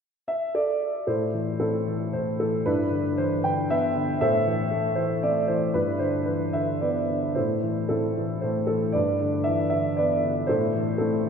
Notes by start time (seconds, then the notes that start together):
0.28 E5
0.55 A4 D5
1.07 A2 E4 A4 C5
1.34 E3
1.60 A2 C4 E4 A4
1.87 E3
2.13 A2 C5
2.40 E3 A4
2.66 G2 D4 E4 B4
2.91 D3
3.18 E3 C5
3.44 D3 G5
3.70 B3 B4 E5
3.95 D3
4.21 A2 A4 C5 E5
4.46 E3
4.71 A3
4.96 E3 C5
5.23 C4 D5
5.48 E3 C5
5.74 G2 D4 E4 B4
5.99 D3 C5
6.26 E3 B4
6.53 D3 E5
6.81 B3 B4 D5
7.09 D3
7.35 A2 E4 A4 C5
7.63 E3
7.89 A2 C4 E4 A4
8.17 E3
8.41 A2 C5
8.67 E3 A4
8.92 G2 B4 D5
9.20 D3
9.44 E3 E5
9.70 D3 E5
9.97 B3 B4 D5
10.25 D3
10.47 A2 E4 A4 C5
10.74 E3
10.98 A3 C4 E4 A4
11.26 E3